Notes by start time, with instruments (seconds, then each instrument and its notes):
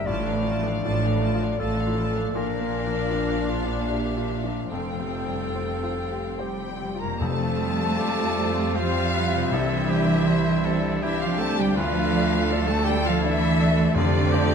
Already playing: harp D3 G3 D4 G4 A#4 D5 A#5
0.06 double bass section A1, grand piano A2, cello section A2, harp A2, viola section F4, clarinet D5, violin section D5 A5
0.26 harp F3, viola section D4, violin section A4 F5
0.33 grand piano A3
0.45 harp D4, viola section F4, violin section D5 A5
0.60 grand piano F3
0.65 viola section D4, violin section A4 F5, harp A4
0.83 double bass section A1, cello section A2, grand piano D4, viola section F4, harp F4, violin section D5 A5
1.01 viola section D4, violin section A4 F5, harp D5
1.10 grand piano A4
1.21 viola section F4, violin section D5 A5, harp A5
1.34 grand piano F4
1.41 viola section D4, violin section A4 F5, harp D5
1.58 double bass section A1, cello section A2, viola section F4, harp F4, clarinet A4, violin section D5 A5, grand piano D5
1.78 viola section D4, violin section A4 F5, harp A4
1.87 grand piano F4
1.97 harp F3, viola section F4, violin section D5 A5
2.10 grand piano A4
2.16 harp A3, viola section D4, violin section A4 F5
2.35 double bass section A#1, grand piano A#2, cello section A#2, harp A#2, viola section D4, clarinet A#4, violin section D5 F5
2.55 harp F3
2.60 grand piano A#3
2.74 harp D4
2.86 grand piano F3
2.92 harp F4
3.11 harp D4, grand piano D4
3.31 harp D5
3.38 grand piano F4
3.50 clarinet F4
3.64 grand piano D4
3.70 harp D5
3.89 harp F4, clarinet G4, grand piano D5, violin section E5
4.10 harp D4
4.17 grand piano F4
4.30 harp F3
4.44 grand piano D4
4.51 harp A#3
4.71 double bass section F1, grand piano F2, harp F2, cello section F2, viola section C4, clarinet A4, violin section F5 G5
4.93 harp F3
4.99 grand piano C3
5.14 harp C4
5.27 grand piano G3
5.35 harp G4
5.55 grand piano C4, harp F4
5.77 harp A4
5.83 grand piano F4
5.98 harp G5
6.11 grand piano G4
6.39 cello section G3, harp F4, clarinet G4, grand piano C5, violin section G5
6.61 harp G4
6.67 grand piano G4
6.81 harp F3
6.95 grand piano F4
7.00 harp F2 C3, cello section A#3, clarinet A#4, violin section A#5
7.08 harp G3
7.13 harp C4
7.17 timpani F2, french horn section G3, violin section F4 A5, harp G4, clarinet A4
7.21 double bass section F2, grand piano F2, viola section G3 C4, cello section A3, french horn section C4
7.62 grand piano G3 G4
7.99 grand piano C4 G4, oboe D5
8.39 grand piano G3 G4
8.75 cello section F3, grand piano C4 G4, clarinet F4, oboe C5, violin section F5
9.14 grand piano G3 G4, oboe B4
9.34 harp C3
9.39 harp C4
9.44 harp D4
9.48 timpani C3, clarinet E4, harp G4, violin section E5
9.52 double bass section C2, grand piano C2, cello section E3, violin section D4, french horn section D4, oboe A4
9.90 grand piano C4 G4, oboe G4
10.27 grand piano D4 G4, oboe C5
10.65 grand piano C4 G4, oboe A4
11.02 cello section E3, grand piano D4 G4, clarinet E4, oboe G4, violin section E5
11.21 cello section F3, clarinet F4, violin section F5
11.38 cello section A3, grand piano C4 G4, clarinet A4, violin section A5
11.57 harp D3, cello section G3, clarinet G4, violin section G5
11.64 harp A3
11.68 harp D4
11.73 viola section D3 A3, clarinet F4, oboe B4, harp D5, violin section F5
11.77 double bass section D2, grand piano D2, cello section F3, french horn section A3
12.15 grand piano A3 D5
12.51 grand piano D4 D5, oboe A4
12.67 cello section A3, clarinet A4, violin section A5
12.85 cello section G3, grand piano A3 D5, clarinet G4, violin section G5
13.02 cello section F3, clarinet F4, violin section F5
13.21 cello section E3, grand piano D4, clarinet E4, violin section E5
13.25 grand piano D5
13.61 grand piano A3 D5
13.78 harp F3
13.82 harp A3
13.87 harp G4
13.91 harp C4, clarinet D4
13.95 double bass section F2, timpani F2, grand piano F2, cello section D3, viola section G3, violin section C4 D5, oboe F4, french horn section G4
14.32 grand piano A3 C5, oboe G4